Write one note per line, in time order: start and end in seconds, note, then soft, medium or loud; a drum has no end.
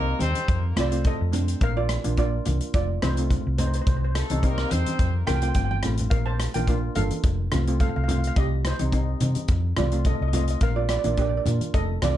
0.00 0.13 C2 medium
0.00 0.19 A#3 medium
0.00 0.19 A#4 medium
0.19 0.32 D#2 loud
0.19 0.48 G3 medium
0.19 0.48 C4 medium
0.19 0.61 C4 medium
0.19 0.48 D#4 medium
0.19 0.61 C5 loud
0.19 closed hi-hat medium
0.19 high conga medium
0.19 low conga medium
0.35 closed hi-hat medium
0.35 high conga medium
0.48 0.71 F2 medium
0.48 kick loud
0.48 closed hi-hat medium
0.76 1.12 C2 medium
0.76 0.85 A3 medium
0.76 0.85 C4 medium
0.76 0.86 F4 medium
0.76 1.04 F4 medium
0.76 1.07 D5 medium
0.76 cross-stick medium
0.76 closed hi-hat medium
0.76 high conga medium
0.76 low conga medium
0.91 1.17 A3 medium
0.91 1.17 C4 medium
0.91 1.17 F4 medium
0.91 closed hi-hat medium
1.04 1.58 A4 medium
1.04 1.64 D#5 medium
1.04 kick medium
1.04 closed hi-hat medium
1.04 low conga medium
1.21 1.54 F2 medium
1.32 1.61 A3 medium
1.32 1.61 C4 medium
1.32 1.61 D4 medium
1.32 closed hi-hat medium
1.32 low conga medium
1.48 closed hi-hat medium
1.61 1.96 A#1 loud
1.61 1.76 A#4 medium
1.61 1.78 F5 loud
1.61 kick loud
1.61 closed hi-hat medium
1.77 2.15 F4 medium
1.77 2.18 D5 medium
1.89 cross-stick medium
1.89 closed hi-hat medium
2.04 2.39 A#1 medium
2.04 2.12 A#3 medium
2.04 2.12 D4 medium
2.04 2.12 F4 medium
2.04 closed hi-hat medium
2.04 high conga medium
2.17 2.35 A#3 medium
2.17 2.35 D4 medium
2.17 2.35 F4 medium
2.17 2.71 F4 medium
2.17 2.73 D5 loud
2.17 kick medium
2.17 closed hi-hat soft
2.45 2.59 C2 loud
2.45 2.74 A#3 medium
2.45 2.74 D4 medium
2.45 2.74 F4 medium
2.45 closed hi-hat medium
2.45 high conga medium
2.45 low conga medium
2.61 closed hi-hat medium
2.74 2.97 F1 medium
2.74 2.87 F4 medium
2.74 2.87 D5 loud
2.74 kick loud
2.74 closed hi-hat medium
3.02 3.37 C2 medium
3.02 3.11 A3 medium
3.02 3.11 C4 medium
3.02 3.55 D#4 medium
3.02 3.12 F4 medium
3.02 3.57 C5 medium
3.02 cross-stick medium
3.02 closed hi-hat medium
3.02 high conga medium
3.02 low conga medium
3.17 3.43 A3 medium
3.17 3.43 C4 medium
3.17 3.43 F4 medium
3.17 closed hi-hat medium
3.30 kick medium
3.30 closed hi-hat medium
3.30 low conga medium
3.47 3.79 C2 medium
3.58 3.87 A3 medium
3.58 3.87 C4 medium
3.58 3.66 D#4 medium
3.58 3.87 D#4 medium
3.58 3.66 C5 medium
3.58 closed hi-hat medium
3.58 low conga medium
3.67 3.74 C5 medium
3.74 3.80 C5 medium
3.74 closed hi-hat medium
3.81 3.88 C5 medium
3.87 4.22 C2 loud
3.87 3.95 C5 medium
3.87 kick loud
3.87 closed hi-hat medium
3.97 4.03 C5 medium
4.04 4.11 C5 medium
4.15 4.41 A3 medium
4.15 4.41 A4 medium
4.15 cross-stick medium
4.15 closed hi-hat medium
4.30 4.64 C2 medium
4.30 4.38 G3 medium
4.30 4.38 C4 medium
4.30 4.38 D#4 medium
4.30 closed hi-hat medium
4.30 high conga medium
4.43 4.61 G3 loud
4.43 4.71 A#3 medium
4.43 4.61 C4 medium
4.43 4.61 D#4 loud
4.43 4.71 A#4 medium
4.43 kick medium
4.43 closed hi-hat medium
4.58 cross-stick medium
4.70 4.84 E2 loud
4.70 5.00 G3 medium
4.70 5.14 C4 medium
4.70 5.00 C4 medium
4.70 5.00 D#4 medium
4.70 5.14 C5 loud
4.70 closed hi-hat medium
4.70 high conga medium
4.70 low conga medium
4.86 closed hi-hat medium
4.86 high conga medium
4.99 5.22 F2 medium
4.99 kick loud
4.99 closed hi-hat medium
5.27 5.50 C2 medium
5.27 5.36 A3 medium
5.27 5.36 C4 medium
5.27 5.36 F4 medium
5.27 5.35 A#4 medium
5.27 5.34 G5 loud
5.27 cross-stick medium
5.27 closed hi-hat medium
5.27 high conga medium
5.27 low conga medium
5.36 5.41 G5 medium
5.42 5.67 A3 medium
5.42 5.67 C4 medium
5.42 5.67 F4 medium
5.42 5.47 G5 medium
5.42 closed hi-hat medium
5.48 5.55 G5 medium
5.54 5.81 G1 medium
5.54 5.63 G5 medium
5.54 kick medium
5.54 closed hi-hat medium
5.54 high conga medium
5.65 5.70 G5 medium
5.71 5.78 G5 medium
5.71 high conga medium
5.83 6.09 A1 medium
5.83 6.12 A3 medium
5.83 6.12 C4 medium
5.83 6.12 F4 medium
5.83 cross-stick medium
5.83 closed hi-hat medium
5.83 low conga medium
5.97 closed hi-hat medium
5.97 low conga medium
6.10 6.46 A#1 loud
6.10 6.25 A#4 medium
6.10 6.26 F5 loud
6.10 kick loud
6.10 closed hi-hat medium
6.26 6.53 C5 medium
6.26 6.55 A5 loud
6.40 cross-stick medium
6.40 closed hi-hat medium
6.54 6.88 A#1 medium
6.54 6.63 A#3 medium
6.54 6.63 D4 medium
6.54 6.63 F4 medium
6.54 6.94 A#4 medium
6.54 6.93 G5 medium
6.54 closed hi-hat medium
6.54 high conga medium
6.67 6.86 A#3 medium
6.67 6.86 D4 medium
6.67 6.86 F4 loud
6.67 kick medium
6.67 closed hi-hat medium
6.95 7.09 G1 medium
6.95 7.25 A#3 medium
6.95 7.25 D4 medium
6.95 7.25 F4 medium
6.95 7.77 A4 medium
6.95 7.79 F5 loud
6.95 closed hi-hat medium
6.95 high conga medium
6.95 low conga medium
7.11 closed hi-hat medium
7.11 high conga medium
7.23 7.47 F1 loud
7.23 kick loud
7.23 closed hi-hat medium
7.52 7.87 C2 medium
7.52 7.62 A3 medium
7.52 7.62 C4 medium
7.52 7.62 F4 medium
7.52 cross-stick medium
7.52 closed hi-hat medium
7.52 high conga medium
7.52 low conga medium
7.67 7.93 A3 medium
7.67 7.93 C4 medium
7.67 7.93 F4 medium
7.67 closed hi-hat medium
7.80 7.88 A4 medium
7.80 7.88 F5 medium
7.80 kick medium
7.80 closed hi-hat medium
7.80 low conga medium
7.89 7.95 F5 medium
7.96 8.29 C2 medium
7.96 8.03 F5 medium
8.04 8.10 F5 medium
8.08 8.36 A3 medium
8.08 8.36 C4 medium
8.08 8.36 F4 medium
8.08 8.18 F5 medium
8.08 closed hi-hat medium
8.08 low conga medium
8.19 8.26 F5 medium
8.24 8.34 F5 medium
8.24 closed hi-hat medium
8.36 8.71 C2 loud
8.36 8.64 G4 medium
8.36 8.66 D#5 loud
8.36 kick loud
8.36 closed hi-hat medium
8.65 9.74 D#4 medium
8.65 9.82 C5 medium
8.65 cross-stick medium
8.65 closed hi-hat medium
8.79 9.14 C2 medium
8.79 8.87 G3 medium
8.79 8.88 C4 medium
8.79 8.88 D#4 medium
8.79 closed hi-hat medium
8.79 high conga medium
8.92 9.10 G3 medium
8.92 9.10 C4 medium
8.92 9.11 D#4 loud
8.92 kick medium
8.92 closed hi-hat medium
9.20 9.33 C3 medium
9.20 9.49 G3 medium
9.20 9.49 C4 medium
9.20 9.49 D#4 medium
9.20 closed hi-hat medium
9.20 high conga medium
9.20 low conga medium
9.35 closed hi-hat medium
9.35 high conga medium
9.48 9.72 F2 loud
9.48 kick loud
9.48 closed hi-hat medium
9.77 10.13 C2 medium
9.77 9.86 A3 medium
9.77 9.86 C4 medium
9.77 9.86 F4 medium
9.77 10.04 F4 medium
9.77 10.07 D5 medium
9.77 cross-stick medium
9.77 closed hi-hat medium
9.77 high conga medium
9.77 low conga medium
9.92 10.17 A3 medium
9.92 10.18 C4 medium
9.92 10.18 F4 medium
9.92 closed hi-hat medium
10.05 10.14 A4 medium
10.05 10.13 D#5 medium
10.05 kick medium
10.05 closed hi-hat medium
10.05 low conga medium
10.15 10.21 D#5 medium
10.21 10.54 C2 medium
10.21 10.27 D#5 medium
10.28 10.35 D#5 medium
10.33 10.62 A3 medium
10.33 10.62 C4 medium
10.33 10.62 F4 medium
10.33 10.42 D#5 medium
10.33 closed hi-hat loud
10.33 low conga medium
10.44 10.49 D#5 medium
10.48 10.58 D#5 medium
10.48 closed hi-hat medium
10.61 10.96 A#1 loud
10.61 10.76 A#4 medium
10.61 10.78 F5 medium
10.61 kick loud
10.61 closed hi-hat medium
10.76 10.88 F4 medium
10.76 10.89 D5 medium
10.89 10.97 F4 medium
10.89 10.97 D5 medium
10.89 cross-stick medium
10.89 closed hi-hat medium
10.99 11.05 D5 medium
11.04 11.38 A#1 medium
11.04 11.12 A#3 medium
11.04 11.13 D4 medium
11.04 11.12 F4 medium
11.04 11.12 D5 medium
11.04 closed hi-hat medium
11.04 high conga medium
11.14 11.20 D5 medium
11.14 kick medium
11.14 closed hi-hat medium
11.18 11.36 A#3 medium
11.18 11.36 D4 medium
11.18 11.36 G4 loud
11.18 11.28 D5 medium
11.29 11.36 D5 medium
11.37 11.43 D5 medium
11.46 11.59 A#2 loud
11.46 11.74 A#3 medium
11.46 11.74 D4 medium
11.46 11.74 F4 medium
11.46 closed hi-hat medium
11.46 high conga medium
11.46 low conga medium
11.61 closed hi-hat medium
11.61 high conga medium
11.74 11.97 F1 loud
11.74 12.01 A4 medium
11.74 12.03 D#5 loud
11.74 kick loud
11.74 closed hi-hat medium
12.02 12.17 C2 medium
12.02 12.12 A3 medium
12.02 12.12 C4 medium
12.02 12.10 F4 medium
12.02 12.12 F4 medium
12.02 12.10 D5 medium
12.02 cross-stick medium
12.02 closed hi-hat medium
12.02 high conga medium
12.02 low conga medium
12.11 12.17 D5 medium